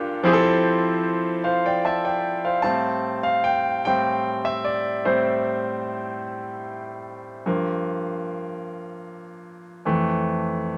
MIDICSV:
0, 0, Header, 1, 2, 480
1, 0, Start_track
1, 0, Tempo, 800000
1, 146, Time_signature, 6, 3, 24, 8
1, 6466, End_track
2, 0, Start_track
2, 0, Title_t, "Grand piano"
2, 0, Program_c, 0, 0
2, 0, Control_c, 0, 64, 127
2, 0, Note_on_c, 0, 43, 81
2, 0, Note_on_c, 0, 58, 74
2, 0, Note_on_c, 0, 62, 75
2, 0, Note_on_c, 0, 65, 68
2, 0, Note_on_c, 0, 67, 88
2, 141, Note_on_c, 0, 53, 89
2, 148, Note_on_c, 0, 60, 78
2, 150, Note_on_c, 0, 64, 77
2, 154, Note_off_c, 0, 67, 0
2, 154, Control_c, 0, 64, 0
2, 154, Note_on_c, 0, 67, 74
2, 155, Note_off_c, 0, 58, 0
2, 157, Note_off_c, 0, 43, 0
2, 157, Note_off_c, 0, 62, 0
2, 158, Note_off_c, 0, 65, 0
2, 158, Note_on_c, 0, 68, 80
2, 191, Note_off_c, 0, 68, 0
2, 200, Note_on_c, 0, 69, 96
2, 275, Control_c, 0, 64, 127
2, 619, Note_off_c, 0, 53, 0
2, 623, Note_off_c, 0, 60, 0
2, 624, Note_off_c, 0, 64, 0
2, 626, Note_off_c, 0, 67, 0
2, 649, Note_off_c, 0, 69, 0
2, 864, Note_on_c, 0, 77, 61
2, 868, Note_on_c, 0, 72, 52
2, 979, Note_off_c, 0, 77, 0
2, 981, Note_off_c, 0, 72, 0
2, 994, Note_on_c, 0, 79, 65
2, 997, Note_on_c, 0, 74, 59
2, 1105, Note_off_c, 0, 79, 0
2, 1106, Note_off_c, 0, 74, 0
2, 1108, Note_on_c, 0, 81, 68
2, 1113, Note_on_c, 0, 76, 58
2, 1221, Note_off_c, 0, 81, 0
2, 1224, Note_off_c, 0, 76, 0
2, 1227, Note_on_c, 0, 79, 63
2, 1229, Note_on_c, 0, 74, 57
2, 1455, Note_off_c, 0, 79, 0
2, 1456, Note_off_c, 0, 74, 0
2, 1468, Note_on_c, 0, 77, 57
2, 1469, Note_on_c, 0, 72, 47
2, 1574, Note_on_c, 0, 81, 90
2, 1580, Note_on_c, 0, 45, 45
2, 1583, Note_on_c, 0, 55, 42
2, 1586, Note_on_c, 0, 60, 53
2, 1594, Control_c, 0, 64, 0
2, 1695, Note_off_c, 0, 77, 0
2, 1696, Note_off_c, 0, 72, 0
2, 1716, Control_c, 0, 64, 127
2, 1902, Note_off_c, 0, 45, 0
2, 1904, Note_off_c, 0, 55, 0
2, 1905, Note_off_c, 0, 60, 0
2, 1940, Note_on_c, 0, 77, 77
2, 1951, Note_off_c, 0, 81, 0
2, 2063, Note_on_c, 0, 79, 82
2, 2067, Note_off_c, 0, 77, 0
2, 2288, Note_off_c, 0, 79, 0
2, 2311, Note_on_c, 0, 79, 91
2, 2319, Note_on_c, 0, 45, 42
2, 2320, Note_on_c, 0, 55, 41
2, 2322, Note_on_c, 0, 60, 50
2, 2529, Note_off_c, 0, 45, 0
2, 2530, Note_off_c, 0, 55, 0
2, 2531, Note_off_c, 0, 60, 0
2, 2669, Note_on_c, 0, 76, 74
2, 2679, Note_off_c, 0, 79, 0
2, 2787, Note_on_c, 0, 74, 74
2, 2791, Note_off_c, 0, 76, 0
2, 3032, Note_on_c, 0, 72, 68
2, 3034, Note_off_c, 0, 74, 0
2, 3034, Note_on_c, 0, 45, 50
2, 3036, Note_on_c, 0, 55, 45
2, 3039, Note_on_c, 0, 60, 54
2, 3725, Note_off_c, 0, 72, 0
2, 4446, Note_off_c, 0, 45, 0
2, 4447, Note_off_c, 0, 55, 0
2, 4449, Note_off_c, 0, 60, 0
2, 4474, Control_c, 0, 64, 0
2, 4476, Note_on_c, 0, 43, 49
2, 4480, Note_on_c, 0, 53, 46
2, 4482, Note_on_c, 0, 58, 54
2, 4573, Control_c, 0, 64, 127
2, 5887, Note_off_c, 0, 43, 0
2, 5889, Note_off_c, 0, 53, 0
2, 5890, Note_off_c, 0, 58, 0
2, 5912, Note_on_c, 0, 41, 50
2, 5915, Control_c, 0, 64, 0
2, 5918, Note_on_c, 0, 57, 56
2, 5919, Note_on_c, 0, 52, 47
2, 6027, Control_c, 0, 64, 127
2, 6229, Note_off_c, 0, 41, 0
2, 6232, Note_off_c, 0, 52, 0
2, 6232, Note_off_c, 0, 57, 0
2, 6466, End_track
0, 0, End_of_file